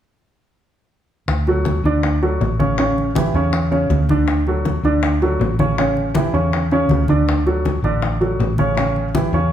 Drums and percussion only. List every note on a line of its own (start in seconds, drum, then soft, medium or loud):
1.28 high bongo medium
1.28 high conga soft
1.47 high conga soft
1.65 high bongo medium
1.65 high conga medium
1.85 high bongo soft
1.85 high conga soft
2.03 high bongo medium
2.03 high conga soft
2.23 high bongo soft
2.23 high conga soft
2.41 high bongo soft
2.41 low bongo medium
2.41 high conga soft
2.60 high bongo soft
2.60 high conga medium
2.78 high bongo medium
2.78 high conga soft
2.98 high conga soft
3.15 high bongo medium
3.15 high conga medium
3.35 high bongo soft
3.53 high bongo medium
3.53 high conga soft
3.72 high bongo soft
3.72 high conga soft
3.90 high bongo soft
3.90 low bongo medium
3.90 high conga medium
4.09 high bongo soft
4.09 high conga medium
4.28 high bongo medium
4.28 high conga soft
4.47 high conga soft
4.65 high bongo soft
4.65 high conga medium
4.84 high bongo soft
4.84 high conga soft
5.03 high bongo medium
5.03 high conga soft
5.22 high bongo soft
5.22 high conga soft
5.41 high bongo soft
5.41 low bongo medium
5.41 high conga soft
5.59 high bongo soft
5.59 high conga medium
5.78 high bongo medium
5.78 high conga soft
5.97 high conga soft
6.15 high bongo medium
6.15 high conga medium
6.34 high bongo soft
6.53 high bongo medium
6.53 high conga soft
6.71 high bongo soft
6.71 high conga soft
6.89 high bongo soft
6.89 low bongo medium
6.89 high conga medium
7.08 high bongo soft
7.08 high conga medium
7.28 high bongo medium
7.28 high conga soft
7.47 high conga soft
7.65 high bongo medium
7.65 high conga medium
7.84 high bongo soft
7.84 high conga soft
8.02 high bongo medium
8.02 high conga soft
8.21 high bongo soft
8.21 high conga soft
8.40 high bongo soft
8.40 low bongo medium
8.40 high conga soft
8.58 high bongo soft
8.58 high conga medium
8.77 high bongo medium
8.77 high conga soft
8.96 high conga soft
9.15 high bongo medium
9.15 high conga medium
9.33 high bongo soft